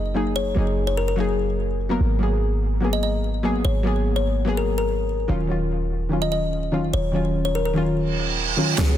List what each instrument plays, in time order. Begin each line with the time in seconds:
Already playing: 808-style bass F#1, synth pluck F#3 A#3 D#4 G#4
0.14 synth pluck F#3 A#3 D#4 G#4
0.36 kalimba C#5
0.54 808-style bass F#1, synth pluck F#3 A#3 D#4 G#4
0.87 kalimba C#5
0.97 kalimba A#4
1.08 kalimba A#4
1.16 synth pluck F#3 A#3 D#4
1.20 synth pluck G#4
1.89 synth pluck F#3 A#3 B3 A#4
2.00 808-style bass G#1
2.19 synth pluck F#3 A#3 B3 G#4
2.80 synth pluck F#3 A#3 B3
2.84 synth pluck G#4
2.93 kalimba D#5
3.03 kalimba D#5
3.43 synth pluck F#3 A#3 B3 G#4
3.65 808-style bass G#1, kalimba C#5
3.83 synth pluck F#3 A#3 B3 G#4
4.16 kalimba C#5
4.45 synth pluck F#3 A#3 B3
4.49 synth pluck G#4
4.57 kalimba A#4
4.78 kalimba A#4
5.28 808-style bass D#1, synth pluck D#3 F#3 C#4 F4
5.47 synth pluck D#3 F#3 C#4
5.51 synth pluck F4
6.09 synth pluck D#3 F#3 C#4
6.13 synth pluck F4
6.22 kalimba D#5
6.32 kalimba D#5
6.72 synth pluck D#3 F#3 C#4 F4
6.93 808-style bass D#1, kalimba C#5
7.12 synth pluck D#3 F#3 C#4
7.16 synth pluck F4
7.45 kalimba C#5
7.55 kalimba A#4
7.65 kalimba A#4
7.74 synth pluck D#3 F#3 C#4 F4
7.96 reverse cymbal
8.57 synth pluck D#3 F#3 C#4 F4
8.76 808-style bass C#2, synth pluck F#3 B3 C#4, supersaw synth B3 C#4 F#4 G#4 C#5, snare, closed hi-hat, riser
8.80 synth pluck G#4